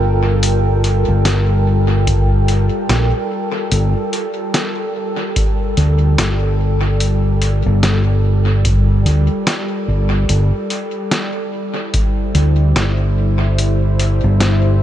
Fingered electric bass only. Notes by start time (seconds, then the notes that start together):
Already playing: G1
1.08 G1
2.89 A#1
3.72 G1
5.78 D2
6.18 G1
7.66 G1
9.06 D2
9.88 G1
10.29 G1
12.35 D2
12.76 G1
14.24 G1